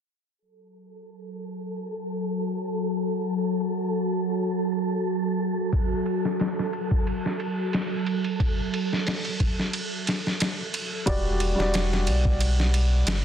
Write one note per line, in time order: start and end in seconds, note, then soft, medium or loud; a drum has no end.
0.38 11.07 F#3 medium
0.38 11.07 F#4 medium
0.38 11.07 A4 medium
5.73 kick medium
5.73 ride medium
6.06 ride medium
6.25 snare soft
6.40 snare loud
6.40 ride medium
6.59 snare soft
6.73 ride medium
6.91 kick medium
7.07 ride medium
7.26 snare soft
7.40 ride medium
7.73 snare loud
7.73 ride medium
8.06 ride medium
8.24 ride soft
8.40 kick loud
8.40 ride medium
8.74 ride medium
8.93 snare soft
9.07 snare loud
9.07 open hi-hat medium
9.25 ride soft
9.40 kick medium
9.40 ride medium
9.59 snare soft
9.73 ride medium
10.07 snare medium
10.07 ride medium
10.27 snare soft
10.40 snare loud
10.40 ride medium
10.74 ride medium
11.06 11.55 E1 medium
11.06 11.53 G3 medium
11.06 11.54 F#4 medium
11.06 11.55 D5 loud
11.06 kick loud
11.06 ride medium
11.40 ride medium
11.55 12.08 E1 medium
11.55 13.25 G3 medium
11.55 13.25 F#4 medium
11.60 13.25 D5 medium
11.60 snare soft
11.74 snare loud
11.74 ride medium
11.93 snare soft
12.07 13.04 B1 medium
12.07 ride medium
12.25 kick medium
12.40 ride medium
12.60 snare soft
12.74 ride medium
13.07 13.23 G1 medium
13.07 snare loud
13.07 ride medium